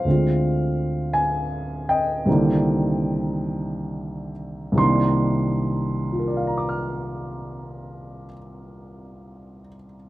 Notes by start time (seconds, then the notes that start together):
Already playing: C5 F5
0.04 D2 D3 G#3 C4
0.10 F4
1.13 G#5
1.89 D#5 G5
2.26 C2 C3 D#3
2.30 D3 A#3
4.72 C2 C3
4.77 D#3 A#3 C6
4.84 D4
6.12 F4
6.19 A#4
6.28 D5
6.37 F5
6.47 A#5
6.58 D6
6.69 F6